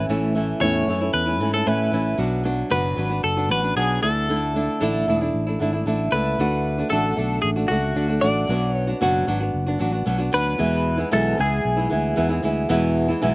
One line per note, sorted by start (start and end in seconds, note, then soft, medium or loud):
0.09 0.52 A1 loud
0.09 0.35 A2 medium
0.09 0.34 E3 medium
0.09 0.34 A3 medium
0.09 0.35 C#4 medium
0.09 0.36 E4 medium
0.35 0.61 E3 medium
0.35 0.61 A3 medium
0.35 0.61 C#4 medium
0.35 0.62 E4 medium
0.61 0.83 E2 loud
0.61 0.88 A2 medium
0.61 0.87 E3 medium
0.61 0.87 A3 medium
0.61 0.88 C#4 medium
0.61 0.88 E4 medium
0.61 1.13 C#5 medium
0.88 1.09 F#2 medium
0.88 1.01 E3 medium
0.88 1.01 A3 medium
0.88 1.01 C#4 medium
0.88 0.99 E4 medium
1.01 1.27 A3 soft
1.01 1.26 C#4 medium
1.01 1.25 E4 medium
1.14 1.40 E2 medium
1.14 1.53 B4 medium
1.26 1.39 A3 soft
1.26 1.40 C#4 soft
1.26 1.40 E4 soft
1.40 1.62 G#2 medium
1.40 1.53 E3 medium
1.40 1.53 A3 medium
1.40 1.53 C#4 medium
1.40 1.52 E4 medium
1.53 1.65 A3 soft
1.53 1.66 C#4 soft
1.53 1.66 E4 soft
1.53 1.67 A4 medium
1.66 1.92 A2 medium
1.66 1.88 A2 medium
1.66 1.90 E3 medium
1.66 1.91 A3 medium
1.66 1.92 C#4 medium
1.66 1.93 E4 medium
1.66 2.19 B4 medium
1.92 2.14 A1 medium
1.92 2.17 E3 medium
1.92 2.18 A3 medium
1.92 2.18 C#4 medium
1.92 2.19 E4 medium
2.18 2.62 B1 medium
2.18 2.45 B2 medium
2.18 2.42 F#3 medium
2.18 2.43 B3 medium
2.18 2.44 D4 medium
2.18 2.44 F#4 medium
2.43 2.69 F#3 medium
2.43 2.70 B3 medium
2.43 2.70 D4 medium
2.43 2.70 F#4 medium
2.70 2.93 F#1 medium
2.70 2.97 B2 medium
2.70 2.95 F#3 medium
2.70 2.96 B3 medium
2.70 2.97 D4 medium
2.70 2.98 F#4 medium
2.70 3.24 B4 medium
2.96 3.19 G#1 medium
2.96 3.10 F#3 medium
2.96 3.11 B3 medium
2.96 3.10 D4 medium
2.96 3.08 F#4 medium
3.10 3.38 B3 soft
3.10 3.37 D4 soft
3.10 3.35 F#4 medium
3.24 3.50 F#1 medium
3.24 3.51 A4 medium
3.37 3.49 B3 soft
3.37 3.49 D4 medium
3.37 3.50 F#4 medium
3.49 3.72 A1 medium
3.49 3.63 F#3 medium
3.49 3.63 B3 medium
3.49 3.62 D4 medium
3.49 3.61 F#4 medium
3.49 3.76 B4 loud
3.62 3.76 B3 soft
3.62 3.76 D4 soft
3.62 3.76 F#4 soft
3.76 3.98 B1 medium
3.76 4.02 B2 medium
3.76 4.01 F#3 medium
3.76 4.02 B3 medium
3.76 4.02 D4 medium
3.76 4.03 F#4 medium
3.76 4.02 G#4 medium
4.01 4.67 D2 medium
4.01 4.27 D3 medium
4.01 4.28 A3 medium
4.01 4.28 D4 medium
4.01 4.29 E4 medium
4.01 5.18 A4 medium
4.29 4.53 D3 medium
4.29 4.54 A3 medium
4.29 4.55 D4 medium
4.29 4.56 E4 medium
4.55 4.79 D3 medium
4.55 4.80 A3 medium
4.55 4.81 D4 medium
4.55 4.81 E4 medium
4.80 5.03 A1 medium
4.80 5.06 D3 medium
4.80 5.07 A3 medium
4.80 5.08 D4 medium
4.80 5.08 E4 medium
5.08 5.29 E1 medium
5.08 5.21 D3 medium
5.08 5.21 A3 medium
5.08 5.21 D4 medium
5.08 5.20 E4 medium
5.18 5.46 E4 medium
5.18 5.83 G#4 medium
5.22 5.48 A3 soft
5.22 5.47 D4 soft
5.34 5.56 A1 medium
5.47 5.59 A3 soft
5.47 5.60 D4 soft
5.47 5.60 E4 medium
5.59 5.82 G#1 medium
5.59 5.73 D3 medium
5.59 5.74 A3 medium
5.59 5.73 D4 medium
5.59 5.71 E4 medium
5.73 5.85 A3 soft
5.73 5.86 D4 soft
5.73 5.86 E4 medium
5.86 6.08 A1 medium
5.86 6.11 D3 medium
5.86 6.12 A3 medium
5.86 6.13 D4 medium
5.86 6.13 E4 medium
6.12 6.34 C#2 medium
6.12 6.37 D3 medium
6.12 6.38 A3 medium
6.12 6.39 D4 medium
6.12 6.40 E4 medium
6.12 6.90 B4 medium
6.39 6.82 D2 loud
6.39 6.78 D3 medium
6.39 6.79 A3 medium
6.39 6.78 D4 medium
6.39 6.77 F#4 medium
6.78 6.91 A3 soft
6.78 6.91 D4 soft
6.78 6.92 F#4 medium
6.90 7.13 A1 loud
6.90 7.15 D3 medium
6.90 7.16 A3 medium
6.90 7.17 D4 medium
6.90 7.18 F#4 medium
6.90 7.41 A4 medium
7.16 7.39 B1 medium
7.16 7.56 D3 medium
7.16 7.57 A3 medium
7.16 7.56 D4 medium
7.16 7.55 F#4 medium
7.42 7.65 A1 medium
7.42 7.49 G#4 medium
7.56 7.69 A3 soft
7.56 7.70 D4 soft
7.56 7.70 F#4 medium
7.68 7.92 C#2 medium
7.68 7.94 D3 medium
7.68 7.95 A3 medium
7.68 7.95 D4 medium
7.68 8.23 F#4 medium
7.68 7.95 F#4 medium
7.95 8.18 D2 medium
7.95 8.09 D3 medium
7.95 8.09 A3 medium
7.95 8.08 D4 medium
7.95 8.07 F#4 medium
8.08 8.22 A3 soft
8.08 8.22 D4 soft
8.08 8.22 F#4 soft
8.21 8.44 A1 medium
8.21 8.49 D3 medium
8.21 8.49 A3 medium
8.21 8.49 D4 medium
8.21 8.49 F#4 medium
8.21 8.73 D5 medium
8.49 8.92 B1 loud
8.49 8.88 B2 medium
8.49 8.88 F#3 medium
8.49 8.89 B3 medium
8.49 8.88 D4 medium
8.49 8.86 F#4 medium
8.73 8.97 C#5 medium
8.87 9.00 B3 soft
8.87 9.01 D4 soft
8.87 9.01 F#4 medium
9.01 9.23 F#1 medium
9.01 9.27 B2 loud
9.01 9.26 F#3 medium
9.01 9.26 B3 loud
9.01 9.27 D4 medium
9.01 9.28 F#4 loud
9.27 9.49 G#1 medium
9.27 9.41 F#3 medium
9.27 9.41 B3 medium
9.27 9.40 D4 medium
9.27 9.39 F#4 medium
9.40 9.68 B3 soft
9.40 9.67 D4 medium
9.40 9.65 F#4 medium
9.54 9.76 F#1 medium
9.66 9.79 B3 soft
9.66 9.79 D4 medium
9.66 9.80 F#4 soft
9.79 10.02 A1 medium
9.79 9.93 F#3 medium
9.79 9.93 B3 medium
9.79 9.93 D4 medium
9.79 9.91 F#4 medium
9.92 10.05 B3 soft
9.92 10.06 D4 soft
9.92 10.06 F#4 medium
10.06 10.28 B1 medium
10.06 10.19 B2 medium
10.06 10.20 F#3 medium
10.06 10.20 B3 medium
10.06 10.18 D4 medium
10.06 10.17 F#4 medium
10.18 10.31 B3 soft
10.18 10.32 D4 soft
10.18 10.32 F#4 medium
10.32 10.55 D2 medium
10.32 10.58 F#3 medium
10.32 10.58 B3 medium
10.32 10.59 D4 medium
10.32 10.59 F#4 medium
10.32 11.08 B4 medium
10.58 10.98 E2 medium
10.58 11.03 E2 loud
10.58 10.98 B2 medium
10.58 10.99 E3 medium
10.58 10.98 G#3 medium
10.58 10.97 B3 medium
10.58 10.96 E4 medium
10.97 11.11 E3 soft
10.97 11.11 G#3 soft
10.97 11.11 B3 soft
10.97 11.11 E4 medium
11.11 11.34 B1 loud
11.11 11.38 E2 medium
11.11 11.38 B2 medium
11.11 11.36 E3 medium
11.11 11.37 G#3 medium
11.11 11.38 B3 medium
11.11 11.38 E4 loud
11.11 11.40 A4 medium
11.37 11.60 C#2 medium
11.37 11.77 E3 medium
11.37 11.77 G#3 medium
11.37 11.77 B3 medium
11.37 11.75 E4 medium
11.37 13.35 G#4 medium
11.65 11.86 B1 medium
11.77 11.89 E3 soft
11.77 11.89 G#3 soft
11.77 11.90 B3 soft
11.77 11.90 E4 medium
11.90 12.13 D2 medium
11.90 12.15 E3 medium
11.90 12.15 G#3 medium
11.90 12.16 B3 medium
11.90 12.16 E4 medium
12.16 12.30 E2 medium
12.16 12.39 E2 loud
12.16 12.30 B2 medium
12.16 12.30 E3 medium
12.16 12.29 G#3 medium
12.16 12.29 B3 medium
12.16 12.28 E4 medium
12.29 12.41 E3 medium
12.29 12.42 G#3 medium
12.29 12.43 B3 medium
12.29 12.43 E4 medium
12.42 12.65 D2 medium
12.42 12.68 E3 medium
12.42 12.68 G#3 medium
12.42 12.69 B3 medium
12.42 12.69 E4 medium
12.69 13.09 E2 medium
12.69 13.13 E2 loud
12.69 13.09 B2 loud
12.69 13.09 E3 loud
12.69 13.09 G#3 medium
12.69 13.08 B3 loud
12.69 13.07 E4 loud
13.08 13.21 E3 medium
13.08 13.21 G#3 soft
13.08 13.22 B3 medium
13.08 13.22 E4 medium
13.22 13.35 B1 loud
13.22 13.35 E2 loud
13.22 13.35 B2 medium
13.22 13.35 E3 medium
13.22 13.35 G#3 loud
13.22 13.35 B3 medium
13.22 13.35 E4 loud